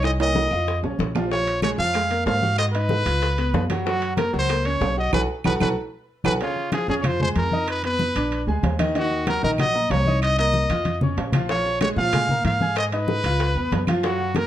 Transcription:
Already playing: upright bass C2, grand piano D#4 D#5
0.03 trumpet D#5, high bongo, high conga, high timbale, claves
0.20 grand piano A#3 A#4, trumpet D#5, high conga, high timbale
0.35 high bongo, high conga, high timbale
0.51 upright bass F2, grand piano F4 F5, high bongo, high conga, claves
0.67 high bongo, high conga
0.83 upright bass B1, grand piano C#4 C#5, high bongo, high conga, low timbale
0.99 upright bass A#1, high bongo, low bongo, high conga
1.15 grand piano F3 F4, high bongo, high conga, low timbale, claves
1.31 grand piano F3 F4, trumpet C#5, high bongo, high conga
1.47 high conga, high timbale
1.62 grand piano G#3 G#4, trumpet C#5, high bongo, high conga, high timbale, low timbale, claves
1.78 upright bass F2, grand piano F3 F4, trumpet F5, high conga
1.94 grand piano G#3 G#4, high bongo, high conga, high timbale, claves
2.10 grand piano A#3 A#4, high conga, high timbale
2.26 upright bass G#2, trumpet F5, high bongo, low bongo, high conga, low timbale
2.42 grand piano F#4 F#5, high conga
2.58 trumpet D#5, high bongo, high conga, high timbale, claves
2.73 grand piano D#4 D#5, trumpet B4, high conga, high timbale
2.89 high bongo, high conga, low timbale
3.06 upright bass C#2, grand piano F4 F5, high bongo, high conga, high timbale, claves
3.22 high bongo, high conga, high timbale
3.38 grand piano B3 B4, high bongo, high conga, high timbale
3.53 upright bass F#2, high bongo, low bongo, high conga, low timbale
3.70 grand piano F#3 F#4, high bongo, high conga, high timbale, claves
3.85 grand piano F#3 F#4, trumpet F#4, high bongo, high conga
4.02 high conga, high timbale
4.17 grand piano A#3 A#4, trumpet A#4, high bongo, high conga, high timbale, low timbale, claves
4.33 upright bass C#2, grand piano F#3 F#4, high conga
4.39 trumpet C5
4.49 grand piano A#3 A#4, high bongo, high conga, high timbale, claves
4.65 grand piano C#4 C#5, trumpet C#5, high conga, high timbale
4.81 upright bass B1, high bongo, low bongo, high conga, low timbale
4.97 grand piano F#4 F#5, trumpet D#5
5.13 upright bass B1, grand piano F#4 A4 B4, trumpet B4, high bongo, high conga, high timbale, claves
5.44 upright bass B1, grand piano F#4 A4 B4, trumpet B4, high bongo, high conga, high timbale, claves
5.60 upright bass B1, grand piano F#4 A4 B4, trumpet B4, high bongo, high conga, high timbale, claves
6.24 upright bass B1, grand piano F#4 A4 B4, trumpet B4, high bongo, high conga, high timbale, claves
6.41 grand piano C#3 C#4 C#5, trumpet F4, high conga, high timbale
6.56 high conga
6.72 grand piano F3 F4 F5, trumpet G#4, high conga, high timbale, claves
6.88 upright bass F2, grand piano C#3 C#4 C#5, trumpet G#4, high conga
7.01 grand piano F3 F4 F5, trumpet C#5, high conga, low conga, high timbale, claves
7.07 trumpet C5
7.20 grand piano G#3 G#4 G#5, trumpet C5, high conga, low conga
7.36 upright bass F2, trumpet A#4, high conga, high timbale
7.52 grand piano D#4 D#5 D#6, high conga
7.67 trumpet B4, high conga, high timbale, claves
7.83 grand piano B3 B4 B5, trumpet B4, high conga, high timbale
7.99 high conga
8.15 upright bass A#1, grand piano D4 D5 D6, high conga, high timbale, claves
8.31 high conga, high timbale
8.47 upright bass D2, grand piano G#3 G#4 G#5, high conga
8.63 upright bass D#2, high conga, high timbale, low timbale
8.79 grand piano D#3 D#4 D#5, high conga, high timbale, claves
8.95 grand piano D#3 D#4 D#5, trumpet F#4, high conga, high timbale
9.11 high conga
9.27 grand piano F#3 F#4 F#5, trumpet A#4, high conga, high timbale, claves
9.43 upright bass A#1, grand piano D#3 D#4 D#5, trumpet A#4, high conga
9.58 grand piano F#3 F#4 F#5, trumpet D#5, high conga, low conga, high timbale, claves
9.75 grand piano A#3 A#4 A#5, high conga
9.90 upright bass C2, trumpet C#5, high conga, high timbale, low timbale
10.06 grand piano D#4 D#5 D#6, high conga
10.22 trumpet D#5, high conga, high timbale, claves
10.38 grand piano A#3 A#4 A#5, trumpet D#5, high conga, high timbale
10.54 high conga
10.69 upright bass F2, grand piano F4 F5 F6, high conga, high timbale, claves
10.85 high conga, high timbale
11.01 grand piano C#4 C#5 C#6, low conga
11.17 upright bass A#1, high timbale, low timbale
11.32 grand piano F3 F4 F5, low conga, high timbale, claves
11.49 grand piano F3 F4 F5, trumpet C#5, high bongo, high conga, high timbale
11.65 high bongo, high conga
11.81 grand piano G#3 G#4 G#5, trumpet C#5, high bongo, high conga, high timbale, claves
11.96 upright bass A#2, grand piano F3 F4 F5, trumpet F5, high bongo, high conga
12.13 grand piano G#3 G#4 G#5, high bongo, high conga, low conga, high timbale, claves
12.29 grand piano A#3 A#4 A#5, high conga, low conga
12.44 upright bass G#2, trumpet F5, high bongo, low bongo, high conga, high timbale
12.61 grand piano G#4 G#5 G#6, high bongo, high conga
12.76 trumpet D#5, high bongo, high conga, high timbale, claves
12.92 grand piano D#4 D#5 D#6, trumpet B4, high bongo, high conga, high timbale
13.08 high bongo, high conga
13.24 upright bass C#2, grand piano F4 F5 F6, high bongo, high conga, high timbale, claves
13.40 high bongo, high conga, high timbale
13.56 upright bass E2, grand piano B3 B4 B5, high conga
13.72 upright bass F#2, high bongo, low bongo, high conga, high timbale, low timbale
13.87 grand piano F3 F4 F5, high bongo, high conga, high timbale, claves
14.03 grand piano F#3 F#4 F5, trumpet F#4, high bongo, high conga, high timbale
14.20 high bongo, high conga
14.35 grand piano A#3 A#4 A#5, trumpet A#4, high bongo, high conga, high timbale, claves

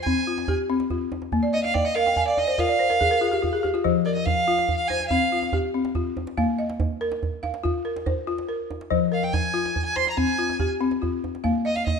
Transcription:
Already playing: balafon C5
0.04 balafon C4, violin G#5, djembe bass
0.27 balafon F4
0.38 djembe slap
0.48 balafon G4, djembe tone, djembe bass
0.70 balafon C4
0.80 djembe slap
0.90 balafon F4, djembe slap, djembe bass
1.12 djembe tone
1.22 djembe slap
1.32 balafon A#3, djembe slap, djembe bass
1.43 balafon D5, djembe slap
1.53 violin D#5, balafon D#5, djembe slap
1.64 violin F5, balafon F5, djembe slap
1.74 violin D5, balafon G5, djembe tone, djembe bass
1.85 balafon D#5, violin D#5
1.95 balafon A#4 F5, violin F5
2.06 balafon G5, djembe slap
2.16 balafon G#5, djembe slap, djembe bass
2.28 violin D5, balafon F5
2.38 balafon D5, violin D#5, djembe slap, djembe tone
2.48 balafon C5, djembe slap
2.58 balafon F4 A#4, violin F5, djembe slap, djembe bass
2.69 balafon D5
2.79 balafon C5, djembe slap
2.90 balafon A#4, djembe slap
3.00 balafon G#4, djembe slap, djembe tone, djembe bass
3.11 balafon A#4, djembe slap
3.21 balafon F4 G#4
3.31 balafon G4, djembe slap
3.42 balafon F4, djembe bass
3.53 balafon G#4
3.63 balafon G4, djembe tone
3.74 balafon F4, djembe slap
3.84 balafon F3 C5, djembe bass
4.05 balafon A#4, violin D5
4.15 violin D#5, djembe slap
4.26 violin F5, djembe tone, djembe bass
4.48 balafon F4
4.58 djembe slap
4.69 djembe slap, djembe bass
4.77 violin F5
4.88 balafon C5, violin G#5, djembe tone
5.00 djembe slap
5.08 balafon C4, violin F5, djembe bass
5.32 balafon F4
5.42 djembe slap
5.53 balafon G4, djembe tone, djembe bass
5.74 balafon C4
5.85 djembe slap
5.95 balafon F4, djembe slap, djembe bass
6.17 djembe tone
6.27 djembe slap
6.37 balafon A#3 F5, djembe bass
6.59 balafon D#5
6.70 djembe slap
6.80 djembe tone, djembe bass
7.01 balafon A#4
7.12 djembe slap
7.23 djembe slap, djembe bass
7.43 balafon F5, djembe tone
7.54 djembe slap
7.64 balafon F4, djembe bass
7.85 balafon A#4
7.96 djembe slap
8.06 balafon C5, djembe tone, djembe bass
8.27 balafon F4
8.38 djembe slap
8.49 balafon A#4, djembe slap
8.70 djembe tone
8.81 djembe slap
8.91 balafon F3 C5, djembe bass
9.12 balafon A#4, violin F5
9.23 violin G5, djembe slap
9.34 violin G#5, djembe tone, djembe bass
9.54 balafon F4
9.65 djembe slap
9.76 djembe slap, djembe bass
9.85 violin G#5
9.96 balafon C5, violin C6, djembe tone
10.07 violin A#5, djembe slap
10.17 balafon C4, violin G#5, djembe bass
10.38 balafon F4
10.50 djembe slap
10.60 balafon G4, djembe tone, djembe bass
10.81 balafon C4
10.91 djembe slap
11.02 balafon F4, djembe slap, djembe bass
11.24 djembe tone
11.35 djembe slap
11.44 balafon A#3 F5, djembe bass
11.56 djembe slap
11.65 balafon D#5, violin D#5
11.76 violin F5, djembe slap
11.86 violin D#5, djembe tone, djembe bass

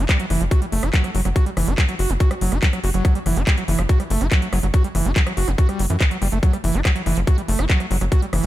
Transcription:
0.09 acid bass G3, kick, cross-stick, clap, closed hi-hat
0.20 acid bass F#3, closed hi-hat
0.30 analog synth bass F#1, acid bass E3, cross-stick, open hi-hat
0.41 analog synth bass F#1, acid bass F#3, closed hi-hat
0.51 acid bass F#4, kick, cross-stick, closed hi-hat
0.62 acid bass G3, closed hi-hat
0.72 analog synth bass F#1, acid bass A3, open hi-hat
0.83 analog synth bass F#1, acid bass F#4, cross-stick, closed hi-hat
0.94 acid bass F#3, kick, clap, closed hi-hat
1.04 acid bass F#3, cross-stick, closed hi-hat
1.15 analog synth bass F#1, acid bass F#3, open hi-hat
1.25 analog synth bass F#1, acid bass F#3, cross-stick, closed hi-hat
1.36 acid bass F#4, kick, closed hi-hat
1.46 acid bass G3, closed hi-hat
1.57 analog synth bass F#1, acid bass E3, cross-stick, open hi-hat
1.67 analog synth bass F#1, acid bass F#4, closed hi-hat
1.78 acid bass F#3, kick, cross-stick, clap, closed hi-hat
1.89 acid bass F#3, closed hi-hat
1.99 analog synth bass F#1, acid bass F#4, open hi-hat
2.10 analog synth bass F#1, acid bass F#3, closed hi-hat
2.20 acid bass F#4, kick, closed hi-hat
2.31 acid bass G3, cross-stick, closed hi-hat
2.41 analog synth bass F#1, acid bass F#3, open hi-hat
2.52 analog synth bass F#1, acid bass F#4, cross-stick, closed hi-hat
2.63 acid bass F#3, kick, clap, closed hi-hat
2.73 acid bass F#3, cross-stick, closed hi-hat
2.84 analog synth bass F#1, acid bass F#4, open hi-hat
2.94 analog synth bass F#1, acid bass F#3, closed hi-hat
3.05 acid bass F#3, kick, cross-stick, closed hi-hat
3.15 acid bass G3, closed hi-hat
3.26 analog synth bass F#1, acid bass E3, cross-stick, open hi-hat
3.36 analog synth bass F#1, acid bass F#4, closed hi-hat
3.47 acid bass G3, kick, cross-stick, clap, closed hi-hat
3.58 acid bass F#3, closed hi-hat
3.68 analog synth bass F#1, acid bass E3, open hi-hat
3.79 analog synth bass F#1, acid bass F#3, cross-stick, closed hi-hat
3.89 acid bass F#4, kick, closed hi-hat
4.00 acid bass G3, cross-stick, closed hi-hat
4.10 analog synth bass F#1, acid bass A3, open hi-hat
4.21 analog synth bass F#1, acid bass F#4, cross-stick, closed hi-hat
4.32 acid bass F#3, kick, clap, closed hi-hat
4.42 acid bass F#3, closed hi-hat
4.53 analog synth bass F#1, acid bass F#3, cross-stick, open hi-hat
4.63 analog synth bass F#1, acid bass F#3, closed hi-hat
4.74 acid bass F#4, kick, cross-stick, closed hi-hat
4.84 acid bass G3, closed hi-hat
4.95 analog synth bass F#1, acid bass E3, cross-stick, open hi-hat
5.05 analog synth bass F#1, acid bass F#4, closed hi-hat
5.16 acid bass F#3, kick, clap, closed hi-hat
5.27 acid bass F#3, cross-stick, closed hi-hat
5.37 analog synth bass F#1, acid bass F#4, open hi-hat
5.48 analog synth bass F#1, acid bass F#3, cross-stick, closed hi-hat
5.58 acid bass F#4, kick, closed hi-hat
5.69 acid bass G3, cross-stick, closed hi-hat
5.79 analog synth bass F#1, acid bass F#3, open hi-hat
5.90 analog synth bass F#2, acid bass E3, closed hi-hat
6.01 acid bass E3, kick, cross-stick, clap, closed hi-hat
6.11 acid bass F#3, closed hi-hat
6.22 analog synth bass F#1, acid bass G3, cross-stick, open hi-hat
6.32 analog synth bass F#1, acid bass A3, closed hi-hat
6.43 acid bass F#3, kick, closed hi-hat
6.53 acid bass G3, cross-stick, closed hi-hat
6.64 analog synth bass F#1, acid bass E3, open hi-hat
6.74 analog synth bass F#1, acid bass F#4, closed hi-hat
6.85 acid bass F#3, kick, cross-stick, clap, closed hi-hat
6.96 acid bass F#3, closed hi-hat
7.06 analog synth bass F#1, acid bass E3, cross-stick, open hi-hat
7.17 analog synth bass F#1, acid bass F#3, closed hi-hat
7.27 acid bass F#4, kick, cross-stick, closed hi-hat
7.38 acid bass G3, closed hi-hat
7.48 analog synth bass F#1, acid bass A3, open hi-hat
7.59 analog synth bass F#1, acid bass F#4, cross-stick, closed hi-hat
7.70 acid bass F#3, kick, clap, closed hi-hat
7.80 acid bass F#3, cross-stick, closed hi-hat
7.91 analog synth bass F#1, acid bass F#3, open hi-hat
8.01 analog synth bass F#1, acid bass F#3, cross-stick, closed hi-hat
8.12 acid bass F#4, kick, closed hi-hat
8.22 acid bass G3, closed hi-hat
8.33 analog synth bass F#1, acid bass E3, cross-stick, open hi-hat

